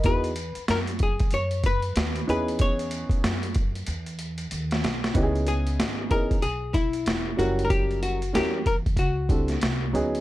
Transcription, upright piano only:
0.00 0.22 A#4 medium
0.00 0.22 D#5 medium
0.05 0.29 B3 medium
0.05 0.29 D#4 medium
0.05 0.29 E4 medium
0.05 0.29 F#4 medium
0.05 0.30 G#4 medium
2.27 3.31 B3 medium
2.27 3.31 C#4 medium
2.27 3.31 D#4 medium
2.27 3.31 E4 medium
2.27 3.32 G#4 medium
5.14 6.05 B3 medium
5.14 6.05 C#4 medium
5.14 6.06 D#4 medium
5.14 6.06 E4 medium
5.14 5.23 G4 medium
5.23 6.09 G#4 medium
6.09 6.34 B3 medium
6.09 6.34 C#4 medium
6.09 6.35 D#4 medium
6.09 6.35 E4 medium
6.09 6.35 G#4 medium
7.37 8.17 F#3 medium
7.37 8.17 G3 medium
7.37 8.17 C#4 medium
7.37 8.17 E4 medium
7.37 8.18 A#4 medium
8.33 8.58 G3 medium
8.33 8.58 C#4 medium
8.33 8.58 E4 medium
8.33 8.58 F#4 medium
8.33 8.59 A#4 medium
9.29 9.53 G3 medium
9.29 9.54 C4 medium
9.29 9.54 D4 medium
9.29 9.54 E4 medium
9.29 9.55 A4 medium
9.93 10.21 F#3 medium
9.93 10.21 B3 medium
9.93 10.21 C#4 medium
9.93 10.21 D#4 medium
9.93 10.21 G#4 medium

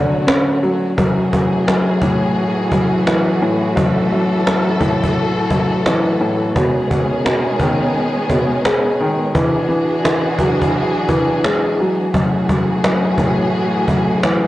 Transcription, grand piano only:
0.00 1.00 D3 medium
0.00 0.62 F#3 loud
0.27 0.97 C#4 medium
0.63 0.98 F#3 medium
0.98 1.32 F#2 medium
1.34 1.66 F#2 medium
1.68 2.71 F#2 medium
2.03 3.40 A2 medium
2.72 3.75 F#2 medium
3.08 4.47 E3 medium
3.42 4.79 A2 medium
3.76 4.11 F#2 medium
4.12 4.45 F#2 medium
4.46 5.50 F#2 medium
4.81 6.19 A2 medium
5.51 6.56 F#2 medium
5.86 6.56 E3 medium
6.21 6.56 A2 medium
6.57 6.89 B2 medium
6.90 7.23 B2 medium
7.25 8.30 B2 medium
7.61 8.99 D#3 medium
8.31 9.35 B2 medium
8.65 9.35 G#3 medium
9.00 9.35 D#3 medium
9.35 9.67 E3 loud
9.69 10.03 E3 medium
10.04 11.07 E3 medium
10.40 11.79 F#3 medium
11.09 12.14 E3 medium
11.45 12.14 G#3 medium
11.80 12.15 F#3 medium
12.14 12.48 F#2 medium
12.50 12.83 F#2 medium
12.84 13.87 F#2 medium
13.19 14.47 A2 medium
13.89 14.47 F#2 medium
14.24 14.47 E3 medium

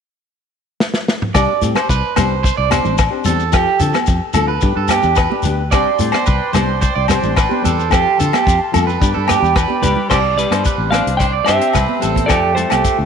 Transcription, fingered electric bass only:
1.35 1.46 C2 medium
1.62 1.73 A2 medium
1.90 2.01 C2 medium
2.17 2.50 C2 medium
2.58 2.80 C2 medium
2.85 3.08 A1 medium
3.26 3.54 E2 medium
3.54 3.65 F2 medium
3.81 3.92 D3 medium
4.08 4.19 F2 medium
4.35 4.57 D2 medium
4.63 4.74 G2 loud
4.76 4.99 G2 medium
5.04 5.26 E2 medium
5.45 5.72 D2 medium
5.72 5.84 C2 medium
5.99 6.11 A2 medium
6.28 6.39 C2 medium
6.55 6.89 C2 medium
6.96 7.18 C2 medium
7.23 7.46 A1 medium
7.65 7.93 E2 medium
7.93 8.03 F2 medium
8.20 8.31 D3 medium
8.47 8.58 F2 medium
8.75 8.97 F2 medium
9.02 9.12 G2 medium
9.17 9.38 G2 medium
9.42 9.65 E2 medium
9.84 9.95 C#2 medium
10.12 10.45 C2 medium
10.51 10.62 G2 medium
10.78 11.01 A1 medium
11.07 11.40 C2 medium
11.48 11.59 G2 medium
11.75 11.86 C2 medium
12.03 12.25 A1 medium
12.31 12.64 F2 medium
12.72 12.82 C2 medium
12.99 13.05 D2 medium

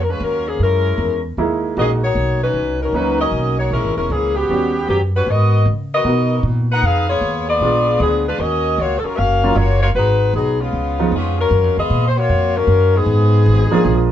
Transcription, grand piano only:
0.00 0.13 F#3 soft
0.00 0.13 A#3 soft
0.00 0.13 C#4 soft
0.00 0.13 F5 soft
1.38 1.75 G#3 medium
1.38 1.75 A#3 medium
1.38 1.75 D#4 soft
1.38 1.76 E4 medium
1.77 2.00 G#3 medium
1.77 2.00 A#3 soft
1.77 2.00 D#4 soft
1.77 2.00 F#4 medium
2.94 3.53 F#3 medium
2.94 3.53 A#3 soft
2.94 3.53 C#4 soft
2.94 3.53 D#4 medium
4.50 4.72 G3 soft
4.50 4.72 B3 soft
4.50 4.72 C#4 soft
4.50 4.72 F#4 medium
6.05 6.64 B3 soft
6.05 6.64 D#4 soft
6.05 6.64 F#4 soft
6.05 6.64 A#4 soft
7.62 8.21 G#3 soft
7.62 8.21 B3 soft
7.62 8.21 D4 soft
7.62 8.21 F4 medium
9.43 9.55 F#3 medium
9.43 9.55 A#3 medium
9.43 9.55 C#4 medium
9.43 9.56 F4 medium
11.00 11.11 F3 medium
11.00 11.11 G#3 soft
11.00 11.11 B3 soft
11.00 11.11 D#4 medium
13.71 14.12 F3 medium
13.71 14.12 G#3 medium
13.71 14.12 A#3 medium
13.71 14.12 D4 medium
13.71 14.12 F4 medium

